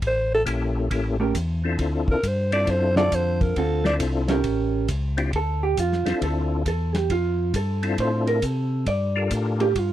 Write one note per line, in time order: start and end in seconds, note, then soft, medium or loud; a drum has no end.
0.02 0.45 A1 medium
0.02 kick soft
0.02 ride medium
0.07 0.31 C5 loud
0.35 0.43 A4 loud
0.46 0.89 A#1 medium
0.46 0.89 A#3 medium
0.46 0.89 C#4 medium
0.46 0.89 E4 medium
0.46 0.89 G4 medium
0.46 0.89 A4 medium
0.46 kick soft
0.46 hi-hat pedal medium
0.46 ride medium
0.91 1.33 A1 medium
0.91 1.16 A#3 medium
0.91 1.17 C#4 medium
0.91 1.17 E4 medium
0.91 1.17 G4 medium
0.91 1.17 A4 medium
0.91 kick soft
0.91 ride medium
1.20 1.33 A3 medium
1.20 1.34 C#4 medium
1.20 1.34 G4 medium
1.20 1.34 A#4 medium
1.35 1.78 E2 loud
1.35 kick soft
1.35 hi-hat pedal medium
1.35 ride medium
1.64 2.20 C4 medium
1.64 2.20 D4 medium
1.64 2.21 E4 medium
1.64 2.21 F4 medium
1.64 2.21 A4 medium
1.79 2.06 D2 medium
1.79 kick soft
1.79 ride medium
2.08 2.15 D2 soft
2.08 2.29 A#4 loud
2.08 kick medium
2.23 2.66 G2 medium
2.23 kick soft
2.23 hi-hat pedal medium
2.23 ride medium
2.28 2.52 C5 medium
2.52 3.09 C4 medium
2.52 3.09 D4 medium
2.52 3.09 E4 medium
2.52 3.09 F4 medium
2.52 3.09 A4 medium
2.52 2.72 D5 loud
2.52 ride medium
2.67 3.10 F#2 loud
2.67 2.97 C5 medium
2.67 kick soft
2.67 ride medium
2.96 3.53 D3 medium
2.96 3.53 C4 medium
2.96 3.53 F4 medium
2.96 3.54 A4 loud
2.96 3.16 D5 loud
2.96 snare medium
3.11 3.54 F2 medium
3.11 3.43 C5 loud
3.11 kick soft
3.11 hi-hat pedal medium
3.11 ride medium
3.41 3.60 A#4 medium
3.41 kick medium
3.41 ride soft
3.56 3.99 D2 medium
3.56 3.82 D3 medium
3.56 3.83 C4 medium
3.56 3.83 F4 medium
3.56 3.83 A4 medium
3.56 3.86 A4 medium
3.56 kick soft
3.56 ride medium
3.84 4.41 C4 medium
3.84 4.41 D4 medium
3.84 4.42 E4 medium
3.84 4.41 F4 medium
3.84 4.42 A4 medium
3.84 3.95 D5 loud
3.84 snare medium
4.00 4.43 C2 medium
4.00 kick soft
4.00 hi-hat pedal medium
4.00 ride medium
4.28 4.86 C#4 medium
4.28 4.86 G4 medium
4.28 4.86 A#4 medium
4.28 snare medium
4.28 ride medium
4.44 4.87 A1 loud
4.44 kick soft
4.44 ride medium
4.88 5.32 C#2 loud
4.88 kick soft
4.88 hi-hat pedal soft
4.88 ride medium
5.17 5.31 C4 medium
5.17 5.31 D4 medium
5.17 5.32 E4 medium
5.17 5.32 F4 medium
5.17 5.32 G4 medium
5.17 ride medium
5.33 5.76 D2 medium
5.33 5.63 A4 medium
5.33 kick soft
5.33 ride medium
5.63 5.77 G4 medium
5.77 6.04 F2 medium
5.77 6.20 F4 medium
5.77 kick soft
5.77 hi-hat pedal medium
5.77 ride medium
5.92 snare soft
6.05 6.14 F2 soft
6.05 6.62 C4 medium
6.05 6.63 D4 medium
6.05 6.63 E4 medium
6.05 6.63 F4 medium
6.05 6.63 A4 medium
6.05 snare soft
6.05 ride medium
6.21 6.65 D2 medium
6.21 6.64 A4 medium
6.21 kick soft
6.21 ride medium
6.66 7.09 E2 medium
6.66 6.95 A4 medium
6.66 kick soft
6.66 hi-hat pedal soft
6.66 ride medium
6.94 7.10 G4 medium
6.94 snare soft
6.94 ride medium
7.10 7.53 F2 medium
7.10 7.52 F4 medium
7.10 kick soft
7.10 ride medium
7.53 7.97 G2 medium
7.53 7.96 A4 medium
7.53 kick soft
7.53 hi-hat pedal soft
7.53 ride medium
7.83 8.40 C4 medium
7.83 8.40 D4 medium
7.83 8.40 E4 medium
7.83 8.40 F4 medium
7.83 8.40 A4 medium
7.83 ride medium
7.98 8.41 A2 medium
7.98 8.28 C5 medium
7.98 kick soft
7.98 ride medium
8.27 8.44 A#4 loud
8.27 ride soft
8.42 8.86 C3 medium
8.42 8.88 A4 medium
8.42 kick soft
8.42 hi-hat pedal medium
8.42 ride medium
8.86 9.30 G2 medium
8.86 9.29 D5 medium
8.86 kick soft
8.86 ride medium
9.15 9.73 D4 medium
9.15 9.73 F4 medium
9.15 9.73 G4 medium
9.15 9.73 A4 medium
9.15 9.73 A#4 medium
9.31 9.74 A2 medium
9.31 kick soft
9.31 hi-hat pedal medium
9.31 ride medium
9.60 9.78 G4 medium
9.60 ride medium
9.75 9.93 G2 medium
9.75 9.93 F4 medium
9.75 kick soft
9.75 ride medium